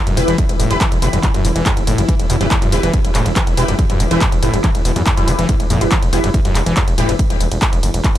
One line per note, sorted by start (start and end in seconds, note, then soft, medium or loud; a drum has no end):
0.00 8.18 E3 medium
0.00 8.18 E4 medium
0.07 0.13 E1 medium
0.07 0.19 F#2 medium
0.07 closed hi-hat medium
0.07 ride medium
0.17 0.24 E1 loud
0.17 0.21 E3 medium
0.17 0.33 E4 loud
0.17 0.33 G4 loud
0.17 0.33 B4 loud
0.17 open hi-hat loud
0.17 ride medium
0.28 0.35 E1 medium
0.28 0.37 E3 loud
0.28 closed hi-hat medium
0.28 ride medium
0.38 0.44 E2 loud
0.38 kick loud
0.38 closed hi-hat medium
0.38 ride medium
0.49 0.56 E1 medium
0.49 closed hi-hat medium
0.49 ride medium
0.60 0.67 E1 loud
0.60 0.72 A2 medium
0.60 open hi-hat loud
0.60 ride medium
0.71 0.77 E1 medium
0.71 0.74 E2 medium
0.71 0.80 E4 medium
0.71 0.80 G4 medium
0.71 0.80 B4 loud
0.71 closed hi-hat medium
0.71 ride medium
0.81 0.87 E3 medium
0.81 kick loud
0.81 clap loud
0.81 closed hi-hat medium
0.81 ride medium
0.92 0.98 E1 medium
0.92 closed hi-hat medium
0.92 ride medium
1.02 1.09 F#1 loud
1.02 1.08 B2 loud
1.02 1.18 E4 medium
1.02 1.18 G4 medium
1.02 1.18 B4 medium
1.02 open hi-hat loud
1.02 ride medium
1.13 1.20 E1 medium
1.13 1.19 F#2 medium
1.13 closed hi-hat medium
1.13 ride medium
1.23 1.30 E2 loud
1.23 kick loud
1.23 clap medium
1.23 closed hi-hat medium
1.23 ride medium
1.34 1.41 E1 medium
1.34 1.46 F#2 medium
1.34 closed hi-hat medium
1.34 ride medium
1.45 1.52 E1 loud
1.45 1.48 E3 medium
1.45 open hi-hat loud
1.45 ride medium
1.56 1.62 E1 medium
1.56 1.64 E3 loud
1.56 closed hi-hat medium
1.56 ride medium
1.66 1.72 E2 loud
1.66 kick loud
1.66 clap loud
1.66 closed hi-hat medium
1.66 ride medium
1.77 1.83 F#1 medium
1.77 closed hi-hat medium
1.77 ride medium
1.87 1.94 F#1 loud
1.87 2.00 A2 medium
1.87 open hi-hat loud
1.87 ride medium
1.98 2.05 F#1 medium
1.98 2.02 E2 medium
1.98 closed hi-hat medium
1.98 ride medium
2.09 2.15 E3 medium
2.09 kick loud
2.09 closed hi-hat medium
2.09 ride medium
2.20 2.26 E1 medium
2.20 closed hi-hat medium
2.20 ride medium
2.30 2.37 E2 loud
2.30 2.36 B2 loud
2.30 open hi-hat loud
2.30 ride medium
2.41 2.47 E1 medium
2.41 2.47 F#2 medium
2.41 2.56 E4 medium
2.41 2.56 G4 medium
2.41 2.56 B4 medium
2.41 closed hi-hat medium
2.41 ride medium
2.51 2.57 E2 loud
2.51 kick loud
2.51 clap loud
2.51 closed hi-hat medium
2.51 ride medium
2.62 2.69 E1 medium
2.62 2.74 F#2 medium
2.62 closed hi-hat medium
2.62 ride medium
2.72 2.79 E1 loud
2.72 2.76 E3 medium
2.72 2.88 E4 medium
2.72 2.88 G4 medium
2.72 2.88 B4 loud
2.72 open hi-hat loud
2.72 ride medium
2.83 2.90 E1 medium
2.83 2.92 E3 loud
2.83 closed hi-hat medium
2.83 ride medium
2.94 3.00 E2 loud
2.94 kick loud
2.94 closed hi-hat medium
2.94 ride medium
3.05 3.11 E1 medium
3.05 closed hi-hat medium
3.05 ride medium
3.15 3.22 E1 loud
3.15 3.28 A2 medium
3.15 clap medium
3.15 open hi-hat loud
3.15 ride medium
3.26 3.32 E1 medium
3.26 3.29 E2 medium
3.26 closed hi-hat medium
3.26 ride medium
3.36 3.42 E3 medium
3.36 kick loud
3.36 clap loud
3.36 closed hi-hat medium
3.36 ride medium
3.47 3.54 E1 medium
3.47 closed hi-hat medium
3.47 ride medium
3.57 3.64 E1 loud
3.57 3.64 B2 loud
3.57 3.73 E4 loud
3.57 3.73 G4 loud
3.57 3.73 B4 loud
3.57 open hi-hat loud
3.57 ride medium
3.68 3.75 E1 medium
3.68 3.74 F#2 medium
3.68 closed hi-hat medium
3.68 ride medium
3.79 3.85 E2 loud
3.79 kick loud
3.79 closed hi-hat medium
3.79 ride medium
3.90 3.96 E1 medium
3.90 4.02 F#2 medium
3.90 closed hi-hat medium
3.90 ride medium
4.00 4.07 E1 loud
4.00 4.04 E3 medium
4.00 open hi-hat loud
4.00 ride medium
4.11 4.18 E1 medium
4.11 4.20 E3 loud
4.11 4.21 E4 loud
4.11 4.21 G4 medium
4.11 4.21 B4 loud
4.11 closed hi-hat medium
4.11 ride medium
4.21 4.27 E2 loud
4.21 kick loud
4.21 clap loud
4.21 closed hi-hat medium
4.21 ride medium
4.32 4.39 E1 medium
4.32 closed hi-hat medium
4.32 ride medium
4.43 4.50 F#1 loud
4.43 4.55 A2 medium
4.43 4.58 E4 medium
4.43 4.58 G4 medium
4.43 4.58 B4 medium
4.43 open hi-hat loud
4.43 ride medium
4.54 4.60 E1 medium
4.54 4.57 E2 medium
4.54 closed hi-hat medium
4.54 ride medium
4.64 4.70 E3 medium
4.64 kick loud
4.64 clap medium
4.64 closed hi-hat medium
4.64 ride medium
4.75 4.81 E1 medium
4.75 closed hi-hat medium
4.75 ride medium
4.85 4.92 E1 loud
4.85 4.91 B2 loud
4.85 open hi-hat loud
4.85 ride medium
4.96 5.03 E2 medium
4.96 5.02 F#2 medium
4.96 closed hi-hat medium
4.96 ride medium
5.06 5.13 E2 loud
5.06 kick loud
5.06 clap loud
5.06 closed hi-hat medium
5.06 ride medium
5.17 5.24 E1 medium
5.17 5.30 F#2 medium
5.17 5.26 E4 medium
5.17 5.26 G4 medium
5.17 5.26 B4 loud
5.17 closed hi-hat medium
5.17 ride medium
5.28 5.35 E1 loud
5.28 5.32 E3 medium
5.28 5.43 E4 medium
5.28 5.43 G4 medium
5.28 5.43 B4 loud
5.28 open hi-hat loud
5.28 ride medium
5.39 5.45 E1 medium
5.39 5.47 E3 loud
5.39 closed hi-hat medium
5.39 ride medium
5.49 5.55 E2 loud
5.49 kick loud
5.49 closed hi-hat medium
5.49 ride medium
5.60 5.66 E1 medium
5.60 closed hi-hat medium
5.60 ride medium
5.70 5.77 E2 loud
5.70 5.83 A2 medium
5.70 open hi-hat loud
5.70 ride medium
5.81 5.88 E1 medium
5.81 5.85 E2 medium
5.81 5.97 E4 medium
5.81 5.97 G4 medium
5.81 5.97 B4 medium
5.81 closed hi-hat medium
5.81 ride medium
5.91 5.98 E3 medium
5.91 kick loud
5.91 clap loud
5.91 closed hi-hat medium
5.91 ride medium
6.03 6.09 E1 medium
6.03 closed hi-hat medium
6.03 ride medium
6.13 6.20 E1 loud
6.13 6.19 B2 loud
6.13 6.29 E4 loud
6.13 6.29 G4 medium
6.13 6.29 B4 loud
6.13 open hi-hat loud
6.13 ride medium
6.24 6.30 E1 medium
6.24 6.30 F#2 medium
6.24 closed hi-hat medium
6.24 ride medium
6.34 6.40 E2 loud
6.34 kick loud
6.34 closed hi-hat medium
6.34 ride medium
6.45 6.52 E1 medium
6.45 6.57 F#2 medium
6.45 closed hi-hat soft
6.45 ride medium
6.55 6.62 E1 loud
6.55 6.59 E3 medium
6.55 clap medium
6.55 open hi-hat loud
6.55 ride medium
6.66 6.73 E1 medium
6.66 6.75 E3 loud
6.66 closed hi-hat soft
6.66 ride medium
6.77 6.83 E2 loud
6.77 kick loud
6.77 clap loud
6.77 closed hi-hat medium
6.77 ride medium
6.88 6.94 E1 medium
6.88 closed hi-hat medium
6.88 ride medium
6.98 7.05 E1 loud
6.98 7.10 A2 medium
6.98 7.14 E4 loud
6.98 7.14 G4 loud
6.98 7.14 B4 loud
6.98 open hi-hat loud
6.98 ride medium
7.09 7.15 E1 medium
7.09 7.12 E2 medium
7.09 closed hi-hat medium
7.09 ride medium
7.19 kick loud
7.19 closed hi-hat medium
7.19 ride medium
7.30 7.37 E1 medium
7.30 closed hi-hat soft
7.30 ride medium
7.41 7.47 E1 loud
7.41 open hi-hat loud
7.41 ride medium
7.52 7.58 E1 medium
7.52 closed hi-hat medium
7.52 ride medium
7.62 kick loud
7.62 clap loud
7.62 closed hi-hat medium
7.62 ride medium
7.73 7.79 E1 medium
7.73 closed hi-hat medium
7.73 ride medium
7.83 7.90 F#1 loud
7.83 open hi-hat loud
7.83 ride medium
7.94 8.01 E1 medium
7.94 closed hi-hat medium
7.94 ride medium
8.04 kick loud
8.04 clap medium
8.04 closed hi-hat medium
8.04 ride medium